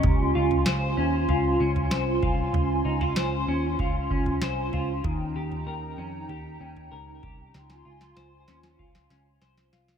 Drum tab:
SD |----o-------o---|----o-------o---|----------------|oo-oo-oo-oo-oooo|
FT |o--o----o--o--o-|o--o----o--o--o-|o--o----o--o--o-|----------------|
BD |o-------------o-|--------o-o-----|o-------------o-|--------o-------|